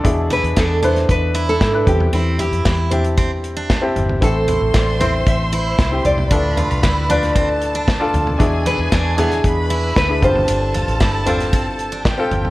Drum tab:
HH |x-xxx-xxx-x-x-x-|x-xxx-xxx-x-x-x-|x-x-x-x-x-x-x-x-|x-xxx-xxx-x-x-x-|
SD |----o--o----o---|----o-------o---|----o-------o---|----o--o----o---|
FT |--o---o-------oo|--o---o-------oo|--o---o-------oo|--o---o-------oo|
BD |o---o---o---o-o-|----o---o---o---|o---o---o---o---|o---o---o---o---|

HH |x-x-x-xxx-x-x-x-|x-xxx-xxx-x-x-x-|
SD |----o--o----o---|----o--o----o---|
FT |--o---o-------oo|--o---o-------oo|
BD |o---o---o---o-o-|----o---o---o---|